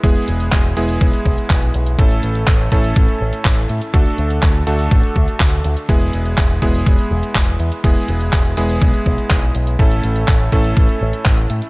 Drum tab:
HH |xxxxxxxxxx-xxxxx|xxxxxxxxxx-xxxxx|xxxxxxxxxx-xxxxx|xxxxxxxxxx-xxxxx|
CP |----x-------x---|----x-------x---|----x-------x---|----x-------x---|
BD |o---o---o-o-o---|o---o-o-o---o---|o---o---o-o-o---|o---o-o-o---o---|

HH |xxxxxxxxxx-xxxxx|xxxxxxxxxx-xxxxx|
CP |----x-------x---|----x-------x---|
BD |o---o---o-o-o---|o---o-o-o---o---|